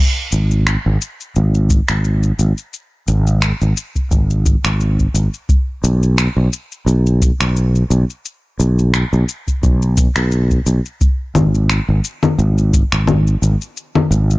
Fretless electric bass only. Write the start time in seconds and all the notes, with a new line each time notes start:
0.33 G#1
0.86 G#1
1.36 G#1
1.90 G#1
2.39 G#1
3.08 G#1
3.62 G#1
4.11 G#1
4.64 G#1
5.14 G#1
5.84 B1
6.37 B1
6.86 B1
7.40 B1
7.90 B1
8.60 B1
9.13 B1
9.63 B1
10.16 B1
10.66 B1
11.35 G#1
11.89 G#1
12.39 G#1
12.93 G#1
13.42 G#1
14.11 G#1